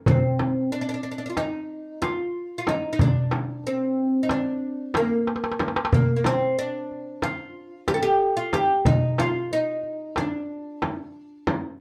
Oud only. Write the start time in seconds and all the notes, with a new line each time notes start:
0.08 C4
0.72 D4
0.81 D4
0.89 D4
0.94 D4
1.03 D4
1.11 D4
1.18 D4
1.26 D4 F4
1.37 D#4
2.02 F4
2.58 F4
2.69 D#4
2.93 D#4
3.01 D4
3.67 C4
4.23 D#4
4.31 D4
4.97 A#3
5.94 A#3
6.16 A#3
6.26 C4
6.59 D4
7.23 F4
7.88 G4
7.94 A4
8.03 G4
8.37 F4
8.54 G4
8.86 D#4
9.20 F4
9.53 D#4
10.18 D4